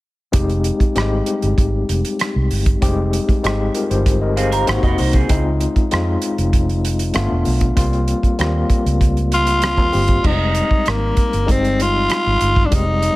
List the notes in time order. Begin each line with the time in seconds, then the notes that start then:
0.32 F1 G#3 C4 D#4 G4, kick, closed hi-hat
0.50 closed hi-hat
0.64 closed hi-hat
0.80 kick, closed hi-hat
0.95 G#1 G3 C4 D#4 G4, cross-stick, closed hi-hat
1.02 G#3
1.26 closed hi-hat
1.42 G1, closed hi-hat
1.58 G#1, kick, closed hi-hat
1.89 F1, closed hi-hat
2.05 closed hi-hat
2.19 cross-stick, closed hi-hat
2.36 C2
2.51 G1, open hi-hat
2.66 kick, closed hi-hat
2.81 F1 G3 C4 D#4 G4, kick, closed hi-hat
2.88 G#3
3.13 closed hi-hat
3.29 kick, closed hi-hat
3.43 G#1 G#3 C4 D#4 G4, cross-stick, closed hi-hat
3.75 F4 A#4, closed hi-hat
3.90 G1 G4 C5, closed hi-hat
4.06 kick, cross-stick, closed hi-hat
4.22 A#4 D#5
4.37 C4 G#4 C5 F5, closed hi-hat
4.52 G4 A#4 C5, closed hi-hat
4.67 G#1 A#3 C4 D#4 F#4 C5, cross-stick, closed hi-hat
4.83 F1 F#4 D#5, kick, closed hi-hat
4.98 C2 D#4 C5, open hi-hat
5.13 C4 G#4, kick, closed hi-hat
5.29 C#2 G#3 C4 D#4 E4, kick, closed hi-hat
5.37 F4
5.61 closed hi-hat
5.76 kick, closed hi-hat
5.91 F2 G#3 C4 D#4 F4, cross-stick, closed hi-hat
6.22 closed hi-hat
6.38 F1, closed hi-hat
6.53 kick, closed hi-hat
6.69 closed hi-hat
6.85 closed hi-hat
6.99 closed hi-hat
7.14 G1 A3 B3 D4 F4, cross-stick, closed hi-hat
7.31 E1
7.45 B1, open hi-hat
7.61 kick, closed hi-hat
7.76 C2 G3 A#3 C4 F4, kick, closed hi-hat
7.93 closed hi-hat
8.08 closed hi-hat
8.23 kick, closed hi-hat
8.38 D#2 G3 A#3 C4 F4, cross-stick, closed hi-hat
8.70 kick, closed hi-hat
8.86 C#2, closed hi-hat
9.01 kick, closed hi-hat
9.17 closed hi-hat
9.32 F4, closed hi-hat
9.47 closed hi-hat
9.62 C4 F4, cross-stick, closed hi-hat
9.77 D#2, kick, closed hi-hat
9.93 G1 C4 G4, open hi-hat
10.08 C4 F4, kick, closed hi-hat
10.23 F1 G3 G#3 C4 D#4, kick, crash
10.55 closed hi-hat
10.71 kick
10.86 G#1 A#3, cross-stick, closed hi-hat
11.17 kick, closed hi-hat
11.33 G1, closed hi-hat
11.46 G3 G#3 C4 D#4, kick, closed hi-hat
11.51 C4
11.65 closed hi-hat
11.80 F4, closed hi-hat
12.10 cross-stick, closed hi-hat
12.27 G#1
12.41 G1, closed hi-hat
12.56 kick
12.66 D4
12.70 F1 G3 G#3 C4 D#4, kick, closed hi-hat
12.75 D#4
13.03 closed hi-hat